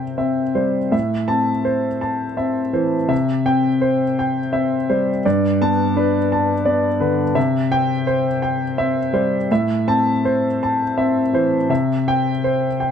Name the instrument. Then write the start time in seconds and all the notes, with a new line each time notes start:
grand piano
Already playing: C3 C4 C5 E5 G5
0.18 C4 E5
0.55 G3 C5
0.92 A2 E5
1.28 C4 A5
1.65 C5
2.01 A5
2.37 C4 E5
2.73 E3 C5
3.08 C3 E5
3.46 C4 G5
3.81 C5
4.19 G5
4.53 C4 E5
4.90 G3 C5
5.25 G2 D5
5.61 B3 A5
5.97 D4 B4
6.32 A5
6.65 B3 D5
7.00 D3 B4
7.35 C3 E5
7.71 C4 G5
8.07 C5
8.42 G5
8.78 C4 E5
9.13 G3 C5
9.52 A2 E5
9.88 C4 A5
10.25 C5
10.63 A5
10.98 C4 E5
11.33 E3 C5
11.69 C3 E5
12.08 C4 G5
12.44 C5
12.80 G5